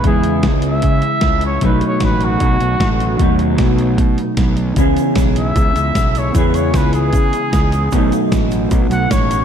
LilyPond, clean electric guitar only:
\new Staff \with { instrumentName = "Clean electric guitar" } { \time 4/4 \key cis \minor \tempo 4 = 152 <cis gis b e'>1 | <b, fis a dis'>1 | <b, fis a dis'>1 | <cis e b cis' gis'>1 |
<cis e b cis' gis'>1 | <b, fis a dis'>1 | }